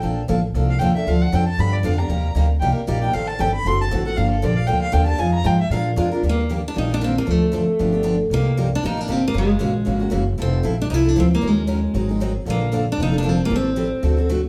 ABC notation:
X:1
M:4/4
L:1/16
Q:"Swing" 1/4=231
K:Gm
V:1 name="Violin"
z8 z2 f2 g2 =e2 | f2 ^f2 g2 a2 =b2 d2 =f2 _b2- | b4 z4 g2 B2 d2 g2 | f2 a2 g2 =b2 c'2 a2 z2 ^f2 |
f2 A2 d2 f2 g2 f2 g2 a2 | _a2 b2 g2 =e2 f2 z6 | z16 | z16 |
z16 | z16 | z16 | z16 |
z16 | z16 |]
V:2 name="Steel-string acoustic guitar"
z16 | z16 | z16 | z16 |
z16 | z16 | B,4 z2 D2 E2 D2 C2 B,2 | A,12 z4 |
B,4 z2 D2 E2 D2 C2 B,2 | ^G,12 z4 | C4 z2 D3/2 E/2 =E2 D2 C2 B,2 | _A,12 z4 |
B,4 z2 D2 E2 D2 C2 B,2 | C12 z4 |]
V:3 name="Steel-string acoustic guitar"
[D,F,B,DA]2 z2 [D,F,B,DA]2 z2 [D,F,B,DA]2 z2 [D,F,B,DA]2 [B,DA]2 | [D,F,CDA]2 z2 [D,F,CDA]2 z2 [D,F,=B,DG]2 z2 [D,F,B,DG]2 [B,DG]2 | [C,G,B,EG]2 z2 [C,G,B,EG]2 z2 [C,G,B,EG]2 z2 [C,G,B,EG]2 [B,EG]2 | [E,G,CGA]2 z2 [E,G,CGA]2 z2 [D,A,C^FA]2 z2 [D,A,CFA]2 [CFA]2 |
[D,F,B,DG]2 z2 [D,F,B,DG]2 z2 [D,F,B,DG]2 z2 [D,F,B,DG]2 [B,DG]2 | [F,_A,EFc]2 z2 [F,A,EFc]2 z2 [F,A,DFB]2 z2 [F,A,DFB]2 [DFB]2 | [E,G,B,DG]2 z2 [E,G,B,DG]2 z2 [E,G,B,DG]2 [B,DG]2 [E,G,B,DG]2 z2 | [D,F,CDA]2 z2 [D,F,CDA]2 z2 [D,F,=B,DG]2 [B,DG]2 [D,F,B,DG]2 z2 |
[C,G,B,EG]2 z2 [C,G,B,EG]2 z2 [C,G,B,EG]2 [B,EG]2 [C,G,B,EG]2 z2 | [^C,=E,^A,^C^F]2 z2 [C,E,A,CF]2 z2 [C,E,A,CF]2 [A,CF]2 [C,E,A,CF]2 z2 | [F,C=EA]2 z2 [F,CEA]2 z2 [F,CEA]2 [CEA]2 [F,CEA]2 z2 | [E,_G,_DEB]2 z2 [E,G,DEB]2 z2 [E,G,CE_A]2 [CEA]2 [E,G,CEA]2 z2 |
[D,F,B,DA]2 z2 [D,F,B,DA]2 z2 [D,F,B,DA]2 [B,DA]2 [D,F,B,DA]2 z2 | [E,G,CGA]2 z2 [E,G,CGA]2 z2 [D,A,C^FA]2 [CFA]2 [D,A,CFA]2 z2 |]
V:4 name="Upright bass" clef=bass
B,,,4 A,,,4 C,,4 E,,4 | D,,4 F,,4 G,,4 F,,4 | E,,4 D,,4 C,,2 z2 B,,,4 | A,,,4 G,,,4 ^F,,,4 A,,,4 |
G,,,4 B,,,4 D,,4 E,,4 | F,,4 _A,,4 B,,4 F,,4 | E,,8 B,,,8 | D,,8 G,,,8 |
C,,8 A,,,4 G,,,4 | ^F,,,4 ^A,,,4 ^G,,,4 F,,,4 | F,,,4 B,,,4 C,,4 D,,4 | E,,8 _A,,,8 |
B,,,8 F,,,8 | A,,,8 D,,8 |]